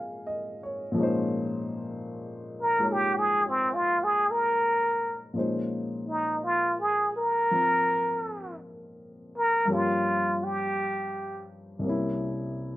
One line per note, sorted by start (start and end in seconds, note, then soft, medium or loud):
0.00 0.90 A#2 soft
0.00 0.93 F3 soft
0.00 0.95 G#3 soft
0.00 0.97 A#3 soft
0.00 0.97 C#4 soft
0.00 0.98 D#4 soft
0.00 0.98 F4 soft
0.00 0.99 G#4 soft
0.00 0.99 A#4 soft
0.00 0.57 F5 soft
0.00 5.36 G#5 soft
0.27 0.82 D#5 soft
0.63 1.18 C#5 soft
0.92 5.32 A#2 medium
0.92 5.33 F3 medium
0.96 2.77 G#3 soft
0.96 5.35 C#4 soft
0.96 2.77 D#4 soft
1.03 5.37 C5 medium
2.62 2.94 A#4 medium
2.78 5.35 G#3 soft
2.78 5.35 A#3 soft
2.78 5.35 D#4 soft
2.78 5.36 F4 soft
2.78 5.36 C#5 soft
2.92 3.20 G4 medium
3.19 3.50 G#4 medium
3.48 3.76 C4 medium
3.75 4.05 F4 medium
4.04 4.32 G#4 medium
4.31 5.19 A#4 medium
5.33 9.68 A#2 soft
5.33 7.50 F3 soft
5.33 9.69 G#3 soft
5.33 9.68 C#4 soft
5.33 9.70 D#4 soft
5.39 9.70 C5 soft
6.08 6.42 D#4 medium
6.43 6.77 F4 medium
6.80 7.14 G#4 medium
7.16 8.56 A#4 medium
7.51 9.66 F3 soft
7.51 9.69 C4 soft
7.51 9.69 A#4 soft
9.38 9.75 A#4 medium
9.65 11.83 G2 soft
9.65 11.84 F3 soft
9.65 11.82 A#3 soft
9.70 11.85 C#4 soft
9.70 10.45 F4 medium
9.70 11.85 G4 soft
10.44 11.50 G4 medium
11.79 12.77 C2 soft
11.79 12.77 C3 soft
11.84 12.77 A#3 soft
11.84 12.77 C#4 soft
11.89 12.77 E4 medium